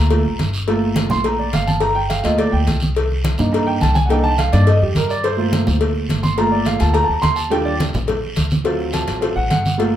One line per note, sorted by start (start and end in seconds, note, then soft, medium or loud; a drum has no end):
0.00 0.23 D2 medium
0.00 0.36 A#5 medium
0.10 0.24 A3 medium
0.10 0.24 A#3 soft
0.10 0.24 F4 medium
0.10 cowbell loud
0.10 high conga soft
0.10 long guiro medium
0.25 0.38 A1 medium
0.25 high conga soft
0.39 1.06 G1 medium
0.39 cowbell medium
0.39 high conga medium
0.39 short guiro medium
0.53 short guiro medium
0.67 1.78 A3 medium
0.67 1.78 A#3 medium
0.67 1.79 F4 medium
0.67 cowbell loud
0.67 high conga soft
0.67 long guiro medium
0.82 high conga soft
0.96 cowbell medium
0.96 high conga loud
0.96 short guiro medium
1.10 1.51 A#1 loud
1.10 1.25 C6 loud
1.10 low conga medium
1.10 short guiro medium
1.24 1.39 A#5 medium
1.24 cowbell loud
1.24 high conga soft
1.24 long guiro medium
1.39 1.53 D5 medium
1.39 high conga soft
1.53 2.20 G1 medium
1.53 1.68 F5 medium
1.53 cowbell medium
1.53 high conga medium
1.53 short guiro medium
1.67 1.82 A5 medium
1.67 high conga medium
1.67 short guiro medium
1.80 1.96 A#5 loud
1.80 cowbell loud
1.80 high conga soft
1.80 long guiro medium
1.95 2.10 G5 loud
1.95 high conga soft
2.10 2.24 F5 medium
2.10 cowbell medium
2.10 high conga medium
2.10 short guiro medium
2.23 2.52 D2 medium
2.23 2.65 A3 medium
2.23 2.66 A#3 medium
2.23 2.66 F4 medium
2.23 2.39 D#5 medium
2.23 cowbell medium
2.23 short guiro medium
2.38 2.53 D5 medium
2.38 cowbell loud
2.38 high conga soft
2.38 long guiro medium
2.52 2.67 D2 medium
2.52 2.61 G5 medium
2.52 high conga soft
2.67 3.34 C2 medium
2.67 cowbell medium
2.67 high conga medium
2.67 short guiro medium
2.80 high conga medium
2.80 short guiro medium
2.95 cowbell loud
2.95 long guiro medium
3.11 high conga soft
3.24 cowbell medium
3.24 high conga medium
3.24 short guiro medium
3.38 3.79 G2 medium
3.38 3.79 A#3 medium
3.38 3.80 D4 medium
3.38 3.80 D#4 medium
3.38 low conga medium
3.38 short guiro medium
3.52 3.67 A#5 medium
3.52 cowbell loud
3.52 high conga soft
3.52 long guiro medium
3.67 3.81 G5 loud
3.67 high conga soft
3.81 4.48 C2 medium
3.81 3.95 A5 loud
3.81 cowbell medium
3.81 high conga medium
3.81 short guiro medium
3.94 4.09 G#5 medium
3.94 high conga medium
3.94 short guiro medium
4.05 4.23 A#3 medium
4.05 4.08 F#5 medium
4.05 long guiro medium
4.10 4.29 D4 medium
4.10 4.29 D#4 medium
4.10 4.24 G5 medium
4.10 cowbell loud
4.24 4.38 A5 loud
4.24 high conga soft
4.38 4.52 F5 medium
4.38 cowbell medium
4.38 high conga medium
4.38 short guiro medium
4.52 4.80 G2 loud
4.52 4.65 A#3 medium
4.52 4.65 D4 soft
4.52 4.66 D#4 medium
4.52 4.67 D5 loud
4.52 cowbell medium
4.52 short guiro medium
4.66 4.81 D#5 medium
4.66 cowbell loud
4.66 high conga soft
4.66 long guiro medium
4.82 4.95 F2 medium
4.82 4.96 G4 medium
4.82 high conga soft
4.95 5.62 G2 medium
4.95 5.10 A#4 medium
4.95 cowbell medium
4.95 high conga medium
4.95 short guiro medium
5.09 5.24 D5 medium
5.09 short guiro medium
5.24 5.64 C5 medium
5.24 cowbell loud
5.24 high conga soft
5.24 long guiro medium
5.37 6.36 A3 medium
5.37 6.36 A#3 medium
5.37 6.37 F4 medium
5.37 high conga soft
5.53 cowbell medium
5.53 high conga loud
5.53 short guiro medium
5.67 6.07 D2 medium
5.67 low conga medium
5.67 short guiro medium
5.81 cowbell loud
5.81 high conga soft
5.81 long guiro medium
5.95 high conga soft
6.09 6.76 G1 medium
6.09 cowbell medium
6.09 high conga medium
6.09 short guiro medium
6.23 6.37 C6 medium
6.23 high conga medium
6.23 short guiro medium
6.37 6.79 A3 medium
6.37 6.79 A#3 medium
6.37 6.79 F4 medium
6.37 6.52 A#5 loud
6.37 cowbell loud
6.37 high conga soft
6.37 long guiro medium
6.52 6.66 D5 medium
6.52 high conga soft
6.65 6.80 F5 medium
6.65 cowbell medium
6.65 high conga medium
6.65 short guiro medium
6.79 7.07 D2 loud
6.79 6.93 A3 medium
6.79 6.94 A#3 soft
6.79 6.94 F4 medium
6.79 6.95 A5 medium
6.79 cowbell medium
6.79 short guiro medium
6.94 7.04 A#5 loud
6.94 cowbell loud
6.94 high conga soft
6.94 long guiro medium
7.04 7.13 A5 medium
7.09 7.23 D2 medium
7.09 high conga soft
7.13 7.23 A#5 medium
7.22 7.89 D#2 medium
7.22 7.36 C6 loud
7.22 cowbell medium
7.22 high conga medium
7.22 short guiro medium
7.36 7.51 A5 medium
7.36 short guiro medium
7.50 7.70 G3 medium
7.50 7.70 D4 medium
7.50 7.71 F4 medium
7.50 7.65 G5 loud
7.50 cowbell loud
7.50 high conga soft
7.50 long guiro medium
7.65 7.74 D5 loud
7.65 high conga soft
7.79 cowbell medium
7.79 high conga medium
7.79 short guiro medium
7.93 8.34 A#1 medium
7.93 low conga loud
7.93 short guiro medium
8.07 cowbell loud
8.07 high conga soft
8.07 low conga medium
8.07 long guiro medium
8.23 high conga soft
8.36 9.03 D2 medium
8.36 cowbell medium
8.36 high conga medium
8.36 short guiro medium
8.50 high conga medium
8.50 short guiro medium
8.64 9.19 F#3 medium
8.64 9.19 C4 medium
8.64 9.20 F4 medium
8.64 cowbell loud
8.64 high conga soft
8.64 long guiro medium
8.80 high conga soft
8.93 9.34 A5 medium
8.93 cowbell medium
8.93 high conga medium
8.93 short guiro medium
9.07 9.35 A1 loud
9.07 cowbell medium
9.07 short guiro medium
9.21 9.34 F#3 medium
9.21 9.34 C4 medium
9.21 9.35 F4 medium
9.21 cowbell loud
9.21 high conga soft
9.21 long guiro medium
9.36 9.50 A1 medium
9.36 9.49 F#5 medium
9.36 high conga soft
9.50 9.96 G1 medium
9.50 9.77 F#5 medium
9.50 cowbell medium
9.50 high conga medium
9.50 short guiro medium
9.65 high conga medium
9.65 short guiro medium
9.78 9.96 A3 medium
9.78 9.96 A#3 medium
9.78 9.96 F4 medium
9.78 cowbell loud
9.78 high conga soft
9.78 long guiro medium